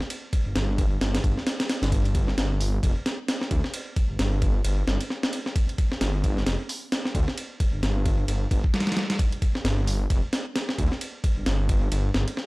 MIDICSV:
0, 0, Header, 1, 3, 480
1, 0, Start_track
1, 0, Tempo, 454545
1, 107, Time_signature, 4, 2, 24, 8
1, 13158, End_track
2, 0, Start_track
2, 0, Title_t, "Detuned saw bass"
2, 0, Program_c, 0, 39
2, 486, Note_on_c, 0, 31, 43
2, 567, Note_off_c, 0, 31, 0
2, 587, Note_on_c, 0, 31, 97
2, 1025, Note_off_c, 0, 31, 0
2, 1067, Note_on_c, 0, 31, 88
2, 1254, Note_off_c, 0, 31, 0
2, 1308, Note_on_c, 0, 31, 95
2, 1410, Note_off_c, 0, 31, 0
2, 1923, Note_on_c, 0, 31, 91
2, 2463, Note_off_c, 0, 31, 0
2, 2507, Note_on_c, 0, 31, 97
2, 2944, Note_off_c, 0, 31, 0
2, 2989, Note_on_c, 0, 29, 82
2, 3090, Note_off_c, 0, 29, 0
2, 3707, Note_on_c, 0, 38, 101
2, 3809, Note_off_c, 0, 38, 0
2, 4327, Note_on_c, 0, 31, 43
2, 4407, Note_off_c, 0, 31, 0
2, 4427, Note_on_c, 0, 31, 100
2, 4864, Note_off_c, 0, 31, 0
2, 4905, Note_on_c, 0, 31, 88
2, 5093, Note_off_c, 0, 31, 0
2, 5146, Note_on_c, 0, 31, 95
2, 5249, Note_off_c, 0, 31, 0
2, 6346, Note_on_c, 0, 31, 98
2, 6784, Note_off_c, 0, 31, 0
2, 6825, Note_on_c, 0, 29, 84
2, 6929, Note_off_c, 0, 29, 0
2, 7548, Note_on_c, 0, 38, 100
2, 7650, Note_off_c, 0, 38, 0
2, 8165, Note_on_c, 0, 31, 44
2, 8246, Note_off_c, 0, 31, 0
2, 8265, Note_on_c, 0, 31, 96
2, 8703, Note_off_c, 0, 31, 0
2, 8745, Note_on_c, 0, 31, 87
2, 8933, Note_off_c, 0, 31, 0
2, 8988, Note_on_c, 0, 31, 96
2, 9090, Note_off_c, 0, 31, 0
2, 10185, Note_on_c, 0, 31, 98
2, 10623, Note_off_c, 0, 31, 0
2, 10667, Note_on_c, 0, 29, 82
2, 10769, Note_off_c, 0, 29, 0
2, 11388, Note_on_c, 0, 38, 101
2, 11490, Note_off_c, 0, 38, 0
2, 12008, Note_on_c, 0, 31, 44
2, 12088, Note_off_c, 0, 31, 0
2, 12109, Note_on_c, 0, 31, 97
2, 12545, Note_off_c, 0, 31, 0
2, 12586, Note_on_c, 0, 31, 85
2, 12773, Note_off_c, 0, 31, 0
2, 12826, Note_on_c, 0, 31, 97
2, 12929, Note_off_c, 0, 31, 0
2, 13158, End_track
3, 0, Start_track
3, 0, Title_t, "Drums"
3, 6, Note_on_c, 9, 38, 43
3, 107, Note_on_c, 9, 51, 87
3, 111, Note_off_c, 9, 38, 0
3, 213, Note_off_c, 9, 51, 0
3, 347, Note_on_c, 9, 36, 93
3, 347, Note_on_c, 9, 51, 68
3, 452, Note_off_c, 9, 36, 0
3, 453, Note_off_c, 9, 51, 0
3, 587, Note_on_c, 9, 38, 114
3, 587, Note_on_c, 9, 51, 85
3, 692, Note_off_c, 9, 38, 0
3, 692, Note_off_c, 9, 51, 0
3, 827, Note_on_c, 9, 36, 96
3, 828, Note_on_c, 9, 51, 69
3, 933, Note_off_c, 9, 36, 0
3, 934, Note_off_c, 9, 51, 0
3, 1070, Note_on_c, 9, 38, 105
3, 1070, Note_on_c, 9, 51, 77
3, 1176, Note_off_c, 9, 38, 0
3, 1176, Note_off_c, 9, 51, 0
3, 1210, Note_on_c, 9, 38, 102
3, 1210, Note_on_c, 9, 51, 79
3, 1308, Note_on_c, 9, 36, 84
3, 1311, Note_off_c, 9, 51, 0
3, 1311, Note_on_c, 9, 51, 60
3, 1316, Note_off_c, 9, 38, 0
3, 1414, Note_off_c, 9, 36, 0
3, 1417, Note_off_c, 9, 51, 0
3, 1452, Note_on_c, 9, 38, 38
3, 1548, Note_off_c, 9, 38, 0
3, 1548, Note_on_c, 9, 38, 100
3, 1548, Note_on_c, 9, 51, 76
3, 1654, Note_off_c, 9, 38, 0
3, 1654, Note_off_c, 9, 51, 0
3, 1688, Note_on_c, 9, 38, 106
3, 1688, Note_on_c, 9, 51, 81
3, 1790, Note_off_c, 9, 38, 0
3, 1790, Note_off_c, 9, 51, 0
3, 1790, Note_on_c, 9, 38, 101
3, 1790, Note_on_c, 9, 51, 81
3, 1896, Note_off_c, 9, 38, 0
3, 1896, Note_off_c, 9, 51, 0
3, 1930, Note_on_c, 9, 38, 106
3, 1930, Note_on_c, 9, 51, 77
3, 2028, Note_on_c, 9, 36, 107
3, 2030, Note_off_c, 9, 51, 0
3, 2030, Note_on_c, 9, 51, 89
3, 2035, Note_off_c, 9, 38, 0
3, 2134, Note_off_c, 9, 36, 0
3, 2135, Note_off_c, 9, 51, 0
3, 2169, Note_on_c, 9, 51, 43
3, 2268, Note_on_c, 9, 36, 94
3, 2269, Note_off_c, 9, 51, 0
3, 2269, Note_on_c, 9, 51, 66
3, 2373, Note_off_c, 9, 36, 0
3, 2374, Note_off_c, 9, 51, 0
3, 2409, Note_on_c, 9, 38, 45
3, 2512, Note_off_c, 9, 38, 0
3, 2512, Note_on_c, 9, 38, 114
3, 2512, Note_on_c, 9, 51, 84
3, 2617, Note_off_c, 9, 38, 0
3, 2617, Note_off_c, 9, 51, 0
3, 2752, Note_on_c, 9, 46, 80
3, 2857, Note_off_c, 9, 46, 0
3, 2989, Note_on_c, 9, 36, 109
3, 2992, Note_on_c, 9, 51, 89
3, 3095, Note_off_c, 9, 36, 0
3, 3098, Note_off_c, 9, 51, 0
3, 3230, Note_on_c, 9, 38, 100
3, 3230, Note_on_c, 9, 51, 75
3, 3336, Note_off_c, 9, 38, 0
3, 3336, Note_off_c, 9, 51, 0
3, 3468, Note_on_c, 9, 38, 105
3, 3468, Note_on_c, 9, 51, 78
3, 3574, Note_off_c, 9, 38, 0
3, 3574, Note_off_c, 9, 51, 0
3, 3606, Note_on_c, 9, 38, 59
3, 3706, Note_on_c, 9, 51, 68
3, 3707, Note_on_c, 9, 36, 94
3, 3712, Note_off_c, 9, 38, 0
3, 3812, Note_off_c, 9, 36, 0
3, 3812, Note_off_c, 9, 51, 0
3, 3846, Note_on_c, 9, 38, 44
3, 3945, Note_on_c, 9, 51, 87
3, 3952, Note_off_c, 9, 38, 0
3, 4051, Note_off_c, 9, 51, 0
3, 4186, Note_on_c, 9, 36, 95
3, 4186, Note_on_c, 9, 51, 68
3, 4292, Note_off_c, 9, 36, 0
3, 4292, Note_off_c, 9, 51, 0
3, 4426, Note_on_c, 9, 38, 113
3, 4426, Note_on_c, 9, 51, 84
3, 4532, Note_off_c, 9, 38, 0
3, 4532, Note_off_c, 9, 51, 0
3, 4666, Note_on_c, 9, 36, 96
3, 4666, Note_on_c, 9, 51, 70
3, 4772, Note_off_c, 9, 36, 0
3, 4772, Note_off_c, 9, 51, 0
3, 4905, Note_on_c, 9, 51, 85
3, 5011, Note_off_c, 9, 51, 0
3, 5148, Note_on_c, 9, 38, 105
3, 5254, Note_off_c, 9, 38, 0
3, 5286, Note_on_c, 9, 51, 60
3, 5390, Note_on_c, 9, 38, 46
3, 5391, Note_off_c, 9, 51, 0
3, 5495, Note_off_c, 9, 38, 0
3, 5527, Note_on_c, 9, 38, 115
3, 5626, Note_on_c, 9, 51, 69
3, 5632, Note_off_c, 9, 38, 0
3, 5732, Note_off_c, 9, 51, 0
3, 5767, Note_on_c, 9, 38, 52
3, 5867, Note_on_c, 9, 36, 109
3, 5868, Note_on_c, 9, 51, 91
3, 5873, Note_off_c, 9, 38, 0
3, 5973, Note_off_c, 9, 36, 0
3, 5974, Note_off_c, 9, 51, 0
3, 6011, Note_on_c, 9, 51, 42
3, 6107, Note_off_c, 9, 51, 0
3, 6107, Note_on_c, 9, 36, 94
3, 6107, Note_on_c, 9, 51, 69
3, 6213, Note_off_c, 9, 36, 0
3, 6213, Note_off_c, 9, 51, 0
3, 6248, Note_on_c, 9, 38, 45
3, 6347, Note_off_c, 9, 38, 0
3, 6347, Note_on_c, 9, 38, 113
3, 6347, Note_on_c, 9, 51, 86
3, 6452, Note_off_c, 9, 38, 0
3, 6452, Note_off_c, 9, 51, 0
3, 6587, Note_on_c, 9, 36, 86
3, 6589, Note_on_c, 9, 51, 61
3, 6693, Note_off_c, 9, 36, 0
3, 6695, Note_off_c, 9, 51, 0
3, 6728, Note_on_c, 9, 38, 39
3, 6827, Note_off_c, 9, 38, 0
3, 6827, Note_on_c, 9, 38, 107
3, 6827, Note_on_c, 9, 51, 81
3, 6933, Note_off_c, 9, 38, 0
3, 6933, Note_off_c, 9, 51, 0
3, 7067, Note_on_c, 9, 46, 70
3, 7173, Note_off_c, 9, 46, 0
3, 7309, Note_on_c, 9, 38, 115
3, 7309, Note_on_c, 9, 51, 88
3, 7415, Note_off_c, 9, 38, 0
3, 7415, Note_off_c, 9, 51, 0
3, 7449, Note_on_c, 9, 38, 59
3, 7547, Note_on_c, 9, 36, 97
3, 7549, Note_on_c, 9, 51, 69
3, 7555, Note_off_c, 9, 38, 0
3, 7653, Note_off_c, 9, 36, 0
3, 7655, Note_off_c, 9, 51, 0
3, 7687, Note_on_c, 9, 38, 44
3, 7788, Note_on_c, 9, 51, 87
3, 7793, Note_off_c, 9, 38, 0
3, 7894, Note_off_c, 9, 51, 0
3, 8027, Note_on_c, 9, 36, 97
3, 8028, Note_on_c, 9, 51, 68
3, 8133, Note_off_c, 9, 36, 0
3, 8134, Note_off_c, 9, 51, 0
3, 8268, Note_on_c, 9, 38, 113
3, 8268, Note_on_c, 9, 51, 86
3, 8373, Note_off_c, 9, 38, 0
3, 8373, Note_off_c, 9, 51, 0
3, 8507, Note_on_c, 9, 36, 96
3, 8507, Note_on_c, 9, 51, 67
3, 8612, Note_off_c, 9, 36, 0
3, 8613, Note_off_c, 9, 51, 0
3, 8746, Note_on_c, 9, 51, 88
3, 8852, Note_off_c, 9, 51, 0
3, 8987, Note_on_c, 9, 36, 94
3, 8990, Note_on_c, 9, 51, 66
3, 9093, Note_off_c, 9, 36, 0
3, 9095, Note_off_c, 9, 51, 0
3, 9126, Note_on_c, 9, 36, 95
3, 9227, Note_on_c, 9, 38, 90
3, 9227, Note_on_c, 9, 51, 68
3, 9231, Note_off_c, 9, 36, 0
3, 9297, Note_off_c, 9, 38, 0
3, 9297, Note_off_c, 9, 51, 0
3, 9297, Note_on_c, 9, 38, 88
3, 9297, Note_on_c, 9, 51, 66
3, 9367, Note_off_c, 9, 38, 0
3, 9367, Note_off_c, 9, 51, 0
3, 9367, Note_on_c, 9, 38, 90
3, 9367, Note_on_c, 9, 51, 66
3, 9418, Note_off_c, 9, 38, 0
3, 9418, Note_off_c, 9, 51, 0
3, 9418, Note_on_c, 9, 38, 90
3, 9418, Note_on_c, 9, 51, 69
3, 9469, Note_off_c, 9, 38, 0
3, 9469, Note_off_c, 9, 51, 0
3, 9469, Note_on_c, 9, 38, 106
3, 9469, Note_on_c, 9, 51, 81
3, 9574, Note_off_c, 9, 38, 0
3, 9574, Note_off_c, 9, 51, 0
3, 9608, Note_on_c, 9, 38, 107
3, 9608, Note_on_c, 9, 51, 80
3, 9707, Note_on_c, 9, 36, 109
3, 9708, Note_off_c, 9, 51, 0
3, 9708, Note_on_c, 9, 51, 90
3, 9714, Note_off_c, 9, 38, 0
3, 9813, Note_off_c, 9, 36, 0
3, 9814, Note_off_c, 9, 51, 0
3, 9846, Note_on_c, 9, 51, 42
3, 9948, Note_off_c, 9, 51, 0
3, 9948, Note_on_c, 9, 36, 94
3, 9948, Note_on_c, 9, 51, 67
3, 10053, Note_off_c, 9, 36, 0
3, 10054, Note_off_c, 9, 51, 0
3, 10087, Note_on_c, 9, 38, 46
3, 10189, Note_off_c, 9, 38, 0
3, 10189, Note_on_c, 9, 38, 112
3, 10189, Note_on_c, 9, 51, 85
3, 10295, Note_off_c, 9, 38, 0
3, 10295, Note_off_c, 9, 51, 0
3, 10427, Note_on_c, 9, 46, 82
3, 10533, Note_off_c, 9, 46, 0
3, 10667, Note_on_c, 9, 36, 110
3, 10668, Note_on_c, 9, 51, 89
3, 10773, Note_off_c, 9, 36, 0
3, 10773, Note_off_c, 9, 51, 0
3, 10907, Note_on_c, 9, 38, 100
3, 10907, Note_on_c, 9, 51, 78
3, 11012, Note_off_c, 9, 38, 0
3, 11012, Note_off_c, 9, 51, 0
3, 11147, Note_on_c, 9, 38, 106
3, 11147, Note_on_c, 9, 51, 78
3, 11253, Note_off_c, 9, 38, 0
3, 11253, Note_off_c, 9, 51, 0
3, 11287, Note_on_c, 9, 38, 59
3, 11388, Note_on_c, 9, 36, 98
3, 11390, Note_on_c, 9, 51, 67
3, 11393, Note_off_c, 9, 38, 0
3, 11494, Note_off_c, 9, 36, 0
3, 11495, Note_off_c, 9, 51, 0
3, 11529, Note_on_c, 9, 38, 43
3, 11628, Note_on_c, 9, 51, 88
3, 11634, Note_off_c, 9, 38, 0
3, 11734, Note_off_c, 9, 51, 0
3, 11867, Note_on_c, 9, 36, 94
3, 11869, Note_on_c, 9, 51, 68
3, 11973, Note_off_c, 9, 36, 0
3, 11974, Note_off_c, 9, 51, 0
3, 12105, Note_on_c, 9, 38, 115
3, 12105, Note_on_c, 9, 51, 86
3, 12210, Note_off_c, 9, 38, 0
3, 12210, Note_off_c, 9, 51, 0
3, 12346, Note_on_c, 9, 36, 95
3, 12346, Note_on_c, 9, 51, 71
3, 12452, Note_off_c, 9, 36, 0
3, 12452, Note_off_c, 9, 51, 0
3, 12585, Note_on_c, 9, 51, 89
3, 12690, Note_off_c, 9, 51, 0
3, 12824, Note_on_c, 9, 38, 103
3, 12930, Note_off_c, 9, 38, 0
3, 12964, Note_on_c, 9, 51, 59
3, 13065, Note_on_c, 9, 38, 48
3, 13069, Note_off_c, 9, 51, 0
3, 13158, Note_off_c, 9, 38, 0
3, 13158, End_track
0, 0, End_of_file